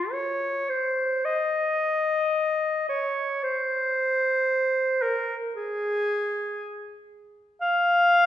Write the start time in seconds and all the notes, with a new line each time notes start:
Already playing: F4
0.12 C#5
0.69 C5
1.25 D#5
2.89 C#5
3.43 C5
5.02 A#4
5.56 G#4
7.62 F5